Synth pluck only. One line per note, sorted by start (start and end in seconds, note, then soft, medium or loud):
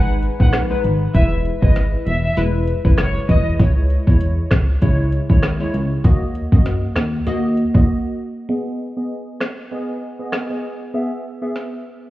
0.40 0.52 G#3 medium
0.40 0.52 D#4 medium
0.40 0.53 B4 medium
0.70 0.83 G#3 medium
0.70 0.83 D#4 medium
0.70 0.83 B4 medium
1.14 1.30 G#3 medium
1.14 1.30 E4 medium
1.14 1.31 B4 loud
1.62 1.75 G#3 medium
1.62 1.75 E4 medium
1.62 1.75 B4 medium
2.37 2.53 G#3 loud
2.37 2.53 E4 medium
2.37 2.53 B4 loud
2.85 2.97 G#3 medium
2.85 2.97 E4 medium
2.85 2.97 B4 medium
3.29 3.45 G#3 medium
3.29 3.45 E4 medium
3.29 3.45 B4 medium
3.59 3.75 G#3 medium
3.59 3.75 E4 medium
3.59 3.76 C#5 loud
4.07 4.20 G#3 medium
4.07 4.20 E4 medium
4.07 4.20 C#5 medium
4.82 4.98 G#3 medium
4.82 4.98 E4 medium
4.82 4.98 C#5 loud
5.29 5.42 G#3 medium
5.29 5.42 E4 medium
5.29 5.42 C#5 medium
5.60 5.73 G#3 medium
5.60 5.73 E4 medium
5.60 5.73 C#5 medium
6.04 6.20 A#3 medium
6.04 6.20 F#4 medium
6.04 6.20 D#5 loud
6.52 6.64 A#3 medium
6.52 6.65 F#4 medium
6.52 6.65 D#5 medium
7.27 7.43 A#3 loud
7.27 7.43 F#4 medium
7.27 7.43 D#5 loud
7.74 7.87 A#3 medium
7.74 7.87 F#4 medium
7.74 7.87 D#5 medium
8.49 8.65 B3 medium
8.49 8.65 G#4 medium
8.49 8.65 D#5 loud
8.97 9.09 B3 medium
8.97 9.10 G#4 medium
8.97 9.10 D#5 medium
9.71 9.87 B3 medium
9.71 9.88 G#4 medium
9.71 9.88 D#5 loud
10.19 10.32 B3 medium
10.19 10.32 G#4 medium
10.19 10.32 D#5 medium
10.50 10.62 B3 medium
10.50 10.63 G#4 medium
10.50 10.63 D#5 medium
10.94 11.10 B3 medium
10.94 11.10 G#4 medium
10.94 11.10 E5 medium
11.42 11.54 B3 medium
11.42 11.54 G#4 medium
11.42 11.55 E5 medium